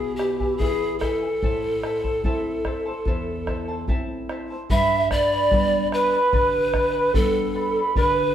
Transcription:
Already playing: B2 E4 G#4 B4 E5 G#5
0.16 E4 G4 B4 E5, bombo rim
0.20 G#5
0.40 E4 B4 G#5, bombo low
0.58 E3 B3 E4 G#4 B4 E5 G#5, bombo low
0.99 E4 A4 B4 E5, bombo rim, bombo low
1.03 G#5
1.22 E4 B4 G#5
1.42 A2 E4 A4 C5 E5 A5, bombo low
1.83 E4 C5 E5 A5, bombo rim
2.04 E4 C5 A5, bombo low
2.24 A3 C4 E4 A4 C5 E5 A5, bombo low
2.65 E4 C5 E5 A5, bombo rim, bombo low
2.86 E4 C5 A5
3.05 E2 E4 A4 C5 E5 A5, bombo low
3.47 E4 C5 E5 A5, bombo rim, bombo low
3.68 E4 C5 A5
3.87 A3 C4 E4 A4 C5 E5 A5, bombo low
4.29 E4 C5 E5 A5, bombo rim
4.50 E4 C5 A5
4.69 G2 G4 B4 D5 E5 G5 B5, bombo low
5.11 B4 D5 G5 B5, bombo rim, bombo low
5.31 B4 D5 B5
5.51 G3 B3 D4 G4 B4 D5 G5 B5, bombo low
5.92 B4 D5 G5 B5, bombo rim
6.12 B4 D5 B5
6.33 D3 G4 B4 D5 G5 B5, bombo low
6.73 B4 D5 G5 B5, bombo rim, bombo low
6.93 B4 D5 B5
7.13 G3 B3 D4 G4 A4 B4 D5 G5 B5, bombo low
7.54 B4 D5 G5 B5
7.75 B4 D5 B5
7.96 D3 G4 A#4 B4 D5 G5 B5, bombo low
8.07 B4

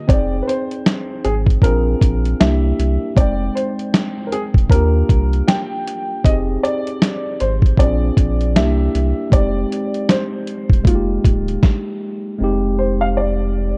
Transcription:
Already playing: D3 A#3 F4 G4 D#5
0.08 F1 C4 D#4 D5 G5, kick, closed hi-hat
0.13 G#4
0.42 B4
0.48 C5, closed hi-hat
0.71 closed hi-hat
0.86 snare, closed hi-hat
1.25 G#1 G#4, closed hi-hat
1.46 kick, closed hi-hat
1.62 A#1 C4 D4 F4 G#4 A#4, kick, closed hi-hat
2.01 A#1, kick, closed hi-hat
2.25 closed hi-hat
2.40 C2 A#3 D4 E4 G4 E5, snare, closed hi-hat
2.79 C2, closed hi-hat
3.15 F1 G#3 C4 D#4 D5, kick, closed hi-hat
3.20 G5
3.55 C5, closed hi-hat
3.79 closed hi-hat
3.94 snare, closed hi-hat
4.27 A#4
4.32 G#4, closed hi-hat
4.54 D#1, kick, closed hi-hat
4.70 D#2 A#3 D4 F4 A#4, kick, closed hi-hat
4.75 G4
5.09 C2, kick, closed hi-hat
5.33 closed hi-hat
5.48 G5, snare, closed hi-hat
5.88 closed hi-hat
6.24 F1 C4 D#4 G4 D#5, kick, closed hi-hat
6.29 G#4
6.63 D5, closed hi-hat
6.87 closed hi-hat
7.02 snare, closed hi-hat
7.40 G#1 C5, closed hi-hat
7.62 kick, closed hi-hat
7.77 A#1 C4 C#4 F4 G#4 D5, kick, closed hi-hat
7.86 D4
8.17 A#1, kick, closed hi-hat
8.41 closed hi-hat
8.55 C2 A#3 D4 E4 G4 E5, snare, closed hi-hat
8.95 C2, closed hi-hat
9.30 F1 G#3 C4 D#4 D5, kick, closed hi-hat
9.35 G4
9.72 closed hi-hat
9.94 closed hi-hat
10.09 C5, snare, closed hi-hat
10.47 closed hi-hat
10.70 D#1, kick, closed hi-hat
10.83 F1 G#3 A#3 D#4 F4, kick, closed hi-hat
10.89 F#4
10.95 G4
11.24 D1, kick, closed hi-hat
11.48 closed hi-hat
11.63 kick, snare
12.38 F1 G#3 C4 D#4
12.44 G4
12.79 C5
13.01 F5
13.17 D5

